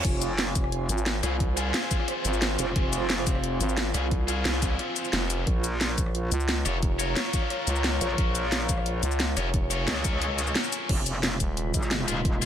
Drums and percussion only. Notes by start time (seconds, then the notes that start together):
0.05 kick, closed hi-hat, crash
0.22 closed hi-hat, cabasa
0.38 snare, closed hi-hat
0.47 cross-stick
0.55 kick, closed hi-hat, cabasa
0.64 cross-stick
0.72 closed hi-hat
0.89 closed hi-hat, cabasa
0.98 cabasa
1.06 snare, closed hi-hat
1.23 cross-stick, closed hi-hat, cabasa
1.40 kick, closed hi-hat
1.57 closed hi-hat, cabasa
1.74 snare, closed hi-hat
1.83 cross-stick
1.91 kick, closed hi-hat, cabasa
2.00 cross-stick
2.08 cross-stick, closed hi-hat
2.25 closed hi-hat, cabasa
2.33 cabasa
2.42 snare, closed hi-hat
2.59 closed hi-hat, cabasa
2.76 kick, closed hi-hat
2.93 closed hi-hat, cabasa
3.10 snare, closed hi-hat
3.18 cross-stick
3.27 kick, closed hi-hat, cabasa
3.35 cross-stick
3.44 closed hi-hat
3.61 closed hi-hat, cabasa
3.69 cabasa
3.77 snare, closed hi-hat
3.94 cross-stick, closed hi-hat, cabasa
4.11 kick, closed hi-hat
4.28 closed hi-hat, cabasa
4.45 snare, closed hi-hat
4.54 cross-stick
4.62 kick, closed hi-hat, cabasa
4.71 cross-stick
4.79 cross-stick, closed hi-hat
4.96 closed hi-hat, cabasa
5.05 cabasa
5.13 snare, closed hi-hat
5.30 closed hi-hat, cabasa
5.47 kick, closed hi-hat
5.64 closed hi-hat, cabasa
5.81 snare, closed hi-hat
5.89 cross-stick
5.98 kick, closed hi-hat, cabasa
6.06 cross-stick
6.15 closed hi-hat
6.32 closed hi-hat, cabasa
6.40 cabasa
6.49 snare, closed hi-hat
6.66 cross-stick, closed hi-hat, cabasa
6.83 kick, closed hi-hat
7.00 closed hi-hat, cabasa
7.16 snare, closed hi-hat
7.25 cross-stick
7.33 kick, closed hi-hat, cabasa
7.42 cross-stick
7.50 cross-stick, closed hi-hat
7.67 closed hi-hat, cabasa
7.76 cabasa
7.84 snare, closed hi-hat
8.01 closed hi-hat, cabasa
8.18 kick, closed hi-hat
8.35 closed hi-hat, cabasa
8.52 snare, closed hi-hat
8.61 cross-stick
8.69 kick, closed hi-hat, cabasa
8.78 cross-stick
8.86 closed hi-hat
9.03 closed hi-hat, cabasa
9.11 cabasa
9.20 snare, closed hi-hat
9.37 cross-stick, closed hi-hat, cabasa
9.54 kick, closed hi-hat
9.71 closed hi-hat, cabasa
9.88 snare, closed hi-hat
9.96 cross-stick
10.05 kick, closed hi-hat, cabasa
10.13 cross-stick
10.22 cross-stick, closed hi-hat
10.38 closed hi-hat, cabasa
10.47 cabasa
10.55 snare, closed hi-hat
10.64 cabasa
10.72 closed hi-hat, cabasa
10.89 kick, closed hi-hat, crash
11.06 closed hi-hat, cabasa
11.15 cross-stick
11.23 snare, closed hi-hat
11.40 kick, closed hi-hat, cabasa
11.57 closed hi-hat
11.74 kick, closed hi-hat, cabasa
11.83 cross-stick, cabasa
11.91 snare, closed hi-hat
12.08 closed hi-hat, cabasa
12.25 kick, closed hi-hat
12.42 closed hi-hat, cabasa